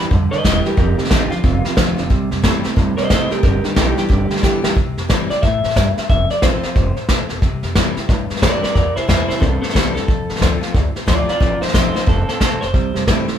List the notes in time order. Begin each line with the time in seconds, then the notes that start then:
Already playing: G3 B3 G4
0.11 F2 G2 D3, kick, snare
0.31 G2 D3 B4 D#5, muted upright bass stroke, snare
0.44 E1 G2 D3 E3 G3 B3 G4 B4 D#5, kick, snare, hi-hat pedal
0.65 G2 E3 B3 G4 A#4, muted upright bass stroke, snare
0.77 F1 F2 C3 G4 A#4, kick, snare
0.97 F2 C3 D#4 G4, muted upright bass stroke, snare
1.04 snare
1.10 A1 F2 D3 F3 A3 C4 D#4 F4 G4, kick, snare, hi-hat pedal
1.30 F2 D3 C4 F4, muted upright bass stroke, snare
1.43 F1 F2 C3, kick, snare
1.65 F2 C3, muted upright bass stroke, snare
1.76 F1 F2 D3 F3 A3 C4 F4, kick, snare, hi-hat pedal
1.97 F1 F2 D3 C4 F4, snare
2.10 C2 C3 G3, kick, snare
2.31 F2 C3 G3, snare
2.42 A2 C3 E3 G3 A3 C4 E4, kick, snare, hi-hat pedal
2.64 C3 A3 C4 E4, muted upright bass stroke, snare
2.76 G2 A2 C3 G3, kick, snare
2.97 C3 G3 C5 D#5, muted upright bass stroke, snare
3.09 A2 C3 E3 G3 A3 C4 E4 C5 D#5, kick, snare, hi-hat pedal
3.30 C3 A3 C4 E4 G4 A#4, muted upright bass stroke, snare
3.43 G1 G2 D3 G4 A#4, kick, snare
3.64 G2 D3 D#4 G4, muted upright bass stroke, snare
3.75 B1 G2 D3 E3 G3 B3 D#4 G4, kick, snare, hi-hat pedal
3.96 G2 E3 B3 G4, muted upright bass stroke, snare
4.09 G1 G2 D3, kick, snare
4.30 G2 D3, muted upright bass stroke, snare
4.36 snare
4.41 G1 G2 D3 E3 G3 B3 G4, kick, snare, hi-hat pedal
4.62 G1 G2 E3 B3 G4, snare
4.75 C2 C3, kick, snare
4.97 F2, snare
5.09 A2 E3 G3 C4 E4, kick, snare, hi-hat pedal
5.30 C4 E4 D5, muted upright bass stroke, snare
5.42 A2 E5, kick, snare
5.64 muted upright bass stroke, snare
5.70 snare
5.76 G2, kick, snare, hi-hat pedal
5.97 muted upright bass stroke, snare
6.09 F1 F2 E5, kick, snare
6.30 D5, muted upright bass stroke, snare
6.42 A1 F3 A3 C4 F4 C5, kick, snare, hi-hat pedal
6.63 C4 F4, muted upright bass stroke, snare
6.75 F1 A2, kick, snare
6.97 muted upright bass stroke, snare
7.09 F1 B2, kick, snare, hi-hat pedal
7.29 F1, snare
7.42 C2 C3, kick, snare
7.63 F2, snare
7.75 A2 E3 G3 C4 E4, kick, snare, hi-hat pedal
7.97 C4 E4, muted upright bass stroke, snare
8.09 G2 A2, kick, snare
8.30 muted upright bass stroke, snare
8.36 snare
8.42 A2 E3 G3 C4 E4 A#4 D5, kick, snare, hi-hat pedal
8.63 C4 E4 A#4 D5, muted upright bass stroke, snare
8.74 E2 C3 A#4 D5, kick, snare
8.96 E4 C5, muted upright bass stroke, snare
9.08 E2 E3 G3 C4 E4 C5, kick, snare, hi-hat pedal
9.28 C4 E4 C5, muted upright bass stroke, snare
9.40 C2 G2 C4 A4, kick, snare
9.62 C4 A4, muted upright bass stroke, snare
9.69 snare
9.74 C2 E3 G3 C4 E4 A4, kick, snare, hi-hat pedal
9.95 E2 C4 E4 A4, snare
10.08 F1 F2, kick, snare
10.30 A1, snare
10.36 F3, snare
10.40 D2 A3 C4 F4, kick, snare, hi-hat pedal
10.61 C4 F4, muted upright bass stroke, snare
10.74 D2 C3, kick, snare
10.95 muted upright bass stroke, snare
11.06 D2 F3 A3 C4 F4 D5, kick, snare, hi-hat pedal
11.27 C4 F4 D5, muted upright bass stroke, snare
11.40 A1 F2 F4 D5, kick, snare
11.61 D#4 C5, muted upright bass stroke, snare
11.68 snare
11.73 A1 F3 A3 C4 D#4 F4 C5, kick, snare, hi-hat pedal
11.94 C4 D#4 F4 C5, muted upright bass stroke, snare
12.06 F1 A2 C4 A4, kick, snare
12.28 C4 A4, muted upright bass stroke, snare
12.40 F1 B2 C4 A4, kick, snare, hi-hat pedal
12.61 F1 C5, snare
12.74 C2 C3 G3, kick, snare
12.94 F2 C3 G3, snare
13.07 A2 C3 E3 G3 A3 C4 E4, kick, snare, hi-hat pedal
13.28 C3 A3 C4 E4, muted upright bass stroke, snare